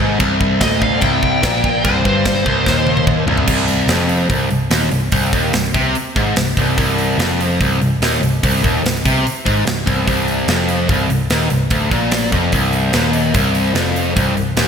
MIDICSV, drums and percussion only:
0, 0, Header, 1, 2, 480
1, 0, Start_track
1, 0, Key_signature, -3, "minor"
1, 0, Tempo, 410678
1, 240, Time_signature, 4, 2, 24, 8
1, 17156, End_track
2, 0, Start_track
2, 0, Title_t, "Drums"
2, 231, Note_on_c, 9, 52, 59
2, 235, Note_on_c, 9, 36, 121
2, 347, Note_off_c, 9, 52, 0
2, 352, Note_off_c, 9, 36, 0
2, 475, Note_on_c, 9, 36, 74
2, 592, Note_off_c, 9, 36, 0
2, 708, Note_on_c, 9, 52, 62
2, 714, Note_on_c, 9, 36, 121
2, 715, Note_on_c, 9, 38, 114
2, 825, Note_off_c, 9, 52, 0
2, 831, Note_off_c, 9, 36, 0
2, 832, Note_off_c, 9, 38, 0
2, 955, Note_on_c, 9, 36, 88
2, 1071, Note_off_c, 9, 36, 0
2, 1184, Note_on_c, 9, 52, 52
2, 1194, Note_on_c, 9, 36, 107
2, 1301, Note_off_c, 9, 52, 0
2, 1311, Note_off_c, 9, 36, 0
2, 1435, Note_on_c, 9, 36, 77
2, 1552, Note_off_c, 9, 36, 0
2, 1673, Note_on_c, 9, 52, 64
2, 1676, Note_on_c, 9, 36, 105
2, 1680, Note_on_c, 9, 38, 117
2, 1789, Note_off_c, 9, 52, 0
2, 1793, Note_off_c, 9, 36, 0
2, 1796, Note_off_c, 9, 38, 0
2, 1916, Note_on_c, 9, 36, 93
2, 2033, Note_off_c, 9, 36, 0
2, 2158, Note_on_c, 9, 52, 70
2, 2159, Note_on_c, 9, 36, 127
2, 2275, Note_off_c, 9, 52, 0
2, 2276, Note_off_c, 9, 36, 0
2, 2399, Note_on_c, 9, 36, 89
2, 2516, Note_off_c, 9, 36, 0
2, 2634, Note_on_c, 9, 52, 66
2, 2636, Note_on_c, 9, 36, 106
2, 2641, Note_on_c, 9, 38, 117
2, 2751, Note_off_c, 9, 52, 0
2, 2753, Note_off_c, 9, 36, 0
2, 2758, Note_off_c, 9, 38, 0
2, 2875, Note_on_c, 9, 36, 85
2, 2992, Note_off_c, 9, 36, 0
2, 3114, Note_on_c, 9, 36, 96
2, 3120, Note_on_c, 9, 38, 68
2, 3231, Note_off_c, 9, 36, 0
2, 3237, Note_off_c, 9, 38, 0
2, 3351, Note_on_c, 9, 48, 71
2, 3468, Note_off_c, 9, 48, 0
2, 3472, Note_on_c, 9, 48, 76
2, 3589, Note_off_c, 9, 48, 0
2, 3589, Note_on_c, 9, 47, 88
2, 3590, Note_on_c, 9, 36, 105
2, 3706, Note_off_c, 9, 47, 0
2, 3707, Note_off_c, 9, 36, 0
2, 3831, Note_on_c, 9, 43, 97
2, 3945, Note_off_c, 9, 43, 0
2, 3945, Note_on_c, 9, 43, 93
2, 4061, Note_on_c, 9, 49, 108
2, 4062, Note_off_c, 9, 43, 0
2, 4064, Note_on_c, 9, 36, 107
2, 4178, Note_off_c, 9, 49, 0
2, 4181, Note_off_c, 9, 36, 0
2, 4300, Note_on_c, 9, 46, 51
2, 4417, Note_off_c, 9, 46, 0
2, 4540, Note_on_c, 9, 46, 74
2, 4547, Note_on_c, 9, 38, 112
2, 4657, Note_off_c, 9, 46, 0
2, 4664, Note_off_c, 9, 38, 0
2, 4782, Note_on_c, 9, 46, 52
2, 4899, Note_off_c, 9, 46, 0
2, 5020, Note_on_c, 9, 46, 71
2, 5023, Note_on_c, 9, 36, 99
2, 5137, Note_off_c, 9, 46, 0
2, 5140, Note_off_c, 9, 36, 0
2, 5265, Note_on_c, 9, 46, 45
2, 5382, Note_off_c, 9, 46, 0
2, 5502, Note_on_c, 9, 46, 83
2, 5509, Note_on_c, 9, 38, 121
2, 5619, Note_off_c, 9, 46, 0
2, 5626, Note_off_c, 9, 38, 0
2, 5744, Note_on_c, 9, 46, 55
2, 5861, Note_off_c, 9, 46, 0
2, 5982, Note_on_c, 9, 46, 91
2, 5988, Note_on_c, 9, 36, 118
2, 6098, Note_off_c, 9, 46, 0
2, 6105, Note_off_c, 9, 36, 0
2, 6228, Note_on_c, 9, 46, 58
2, 6229, Note_on_c, 9, 36, 109
2, 6345, Note_off_c, 9, 46, 0
2, 6346, Note_off_c, 9, 36, 0
2, 6467, Note_on_c, 9, 46, 80
2, 6474, Note_on_c, 9, 38, 102
2, 6583, Note_off_c, 9, 46, 0
2, 6591, Note_off_c, 9, 38, 0
2, 6714, Note_on_c, 9, 36, 112
2, 6717, Note_on_c, 9, 46, 57
2, 6831, Note_off_c, 9, 36, 0
2, 6834, Note_off_c, 9, 46, 0
2, 6956, Note_on_c, 9, 46, 68
2, 7073, Note_off_c, 9, 46, 0
2, 7200, Note_on_c, 9, 36, 98
2, 7203, Note_on_c, 9, 46, 48
2, 7317, Note_off_c, 9, 36, 0
2, 7320, Note_off_c, 9, 46, 0
2, 7438, Note_on_c, 9, 46, 78
2, 7445, Note_on_c, 9, 38, 112
2, 7555, Note_off_c, 9, 46, 0
2, 7562, Note_off_c, 9, 38, 0
2, 7680, Note_on_c, 9, 36, 89
2, 7685, Note_on_c, 9, 46, 55
2, 7797, Note_off_c, 9, 36, 0
2, 7801, Note_off_c, 9, 46, 0
2, 7923, Note_on_c, 9, 36, 117
2, 7925, Note_on_c, 9, 46, 83
2, 8039, Note_off_c, 9, 36, 0
2, 8041, Note_off_c, 9, 46, 0
2, 8164, Note_on_c, 9, 46, 53
2, 8281, Note_off_c, 9, 46, 0
2, 8410, Note_on_c, 9, 46, 70
2, 8417, Note_on_c, 9, 38, 102
2, 8527, Note_off_c, 9, 46, 0
2, 8534, Note_off_c, 9, 38, 0
2, 8656, Note_on_c, 9, 46, 56
2, 8773, Note_off_c, 9, 46, 0
2, 8891, Note_on_c, 9, 36, 96
2, 8893, Note_on_c, 9, 46, 73
2, 9007, Note_off_c, 9, 36, 0
2, 9010, Note_off_c, 9, 46, 0
2, 9133, Note_on_c, 9, 46, 43
2, 9250, Note_off_c, 9, 46, 0
2, 9375, Note_on_c, 9, 46, 77
2, 9382, Note_on_c, 9, 38, 101
2, 9491, Note_off_c, 9, 46, 0
2, 9498, Note_off_c, 9, 38, 0
2, 9620, Note_on_c, 9, 46, 55
2, 9737, Note_off_c, 9, 46, 0
2, 9859, Note_on_c, 9, 36, 118
2, 9865, Note_on_c, 9, 46, 86
2, 9976, Note_off_c, 9, 36, 0
2, 9982, Note_off_c, 9, 46, 0
2, 10101, Note_on_c, 9, 36, 108
2, 10109, Note_on_c, 9, 46, 51
2, 10218, Note_off_c, 9, 36, 0
2, 10226, Note_off_c, 9, 46, 0
2, 10352, Note_on_c, 9, 46, 86
2, 10359, Note_on_c, 9, 38, 111
2, 10469, Note_off_c, 9, 46, 0
2, 10476, Note_off_c, 9, 38, 0
2, 10583, Note_on_c, 9, 36, 91
2, 10591, Note_on_c, 9, 46, 60
2, 10700, Note_off_c, 9, 36, 0
2, 10708, Note_off_c, 9, 46, 0
2, 10832, Note_on_c, 9, 46, 73
2, 10949, Note_off_c, 9, 46, 0
2, 11062, Note_on_c, 9, 36, 86
2, 11072, Note_on_c, 9, 46, 53
2, 11179, Note_off_c, 9, 36, 0
2, 11188, Note_off_c, 9, 46, 0
2, 11301, Note_on_c, 9, 46, 76
2, 11308, Note_on_c, 9, 38, 122
2, 11418, Note_off_c, 9, 46, 0
2, 11425, Note_off_c, 9, 38, 0
2, 11539, Note_on_c, 9, 36, 99
2, 11542, Note_on_c, 9, 46, 53
2, 11656, Note_off_c, 9, 36, 0
2, 11658, Note_off_c, 9, 46, 0
2, 11776, Note_on_c, 9, 36, 111
2, 11780, Note_on_c, 9, 46, 83
2, 11893, Note_off_c, 9, 36, 0
2, 11897, Note_off_c, 9, 46, 0
2, 12015, Note_on_c, 9, 46, 50
2, 12132, Note_off_c, 9, 46, 0
2, 12250, Note_on_c, 9, 46, 74
2, 12257, Note_on_c, 9, 38, 98
2, 12367, Note_off_c, 9, 46, 0
2, 12374, Note_off_c, 9, 38, 0
2, 12489, Note_on_c, 9, 46, 57
2, 12606, Note_off_c, 9, 46, 0
2, 12729, Note_on_c, 9, 46, 71
2, 12731, Note_on_c, 9, 36, 109
2, 12846, Note_off_c, 9, 46, 0
2, 12848, Note_off_c, 9, 36, 0
2, 12974, Note_on_c, 9, 46, 49
2, 13090, Note_off_c, 9, 46, 0
2, 13208, Note_on_c, 9, 46, 69
2, 13215, Note_on_c, 9, 38, 108
2, 13325, Note_off_c, 9, 46, 0
2, 13332, Note_off_c, 9, 38, 0
2, 13443, Note_on_c, 9, 46, 55
2, 13560, Note_off_c, 9, 46, 0
2, 13680, Note_on_c, 9, 46, 85
2, 13686, Note_on_c, 9, 36, 120
2, 13797, Note_off_c, 9, 46, 0
2, 13803, Note_off_c, 9, 36, 0
2, 13925, Note_on_c, 9, 36, 96
2, 13925, Note_on_c, 9, 46, 52
2, 14042, Note_off_c, 9, 36, 0
2, 14042, Note_off_c, 9, 46, 0
2, 14159, Note_on_c, 9, 46, 84
2, 14166, Note_on_c, 9, 38, 115
2, 14276, Note_off_c, 9, 46, 0
2, 14283, Note_off_c, 9, 38, 0
2, 14403, Note_on_c, 9, 46, 58
2, 14404, Note_on_c, 9, 36, 101
2, 14520, Note_off_c, 9, 46, 0
2, 14521, Note_off_c, 9, 36, 0
2, 14636, Note_on_c, 9, 46, 78
2, 14643, Note_on_c, 9, 36, 92
2, 14753, Note_off_c, 9, 46, 0
2, 14760, Note_off_c, 9, 36, 0
2, 14878, Note_on_c, 9, 46, 51
2, 14995, Note_off_c, 9, 46, 0
2, 15115, Note_on_c, 9, 46, 89
2, 15122, Note_on_c, 9, 38, 106
2, 15231, Note_off_c, 9, 46, 0
2, 15238, Note_off_c, 9, 38, 0
2, 15350, Note_on_c, 9, 46, 57
2, 15467, Note_off_c, 9, 46, 0
2, 15595, Note_on_c, 9, 46, 93
2, 15599, Note_on_c, 9, 36, 117
2, 15711, Note_off_c, 9, 46, 0
2, 15716, Note_off_c, 9, 36, 0
2, 15834, Note_on_c, 9, 46, 55
2, 15951, Note_off_c, 9, 46, 0
2, 16074, Note_on_c, 9, 46, 70
2, 16082, Note_on_c, 9, 38, 101
2, 16191, Note_off_c, 9, 46, 0
2, 16198, Note_off_c, 9, 38, 0
2, 16317, Note_on_c, 9, 46, 61
2, 16434, Note_off_c, 9, 46, 0
2, 16558, Note_on_c, 9, 36, 106
2, 16558, Note_on_c, 9, 46, 66
2, 16674, Note_off_c, 9, 36, 0
2, 16675, Note_off_c, 9, 46, 0
2, 16796, Note_on_c, 9, 46, 45
2, 16913, Note_off_c, 9, 46, 0
2, 17026, Note_on_c, 9, 46, 77
2, 17033, Note_on_c, 9, 38, 108
2, 17143, Note_off_c, 9, 46, 0
2, 17150, Note_off_c, 9, 38, 0
2, 17156, End_track
0, 0, End_of_file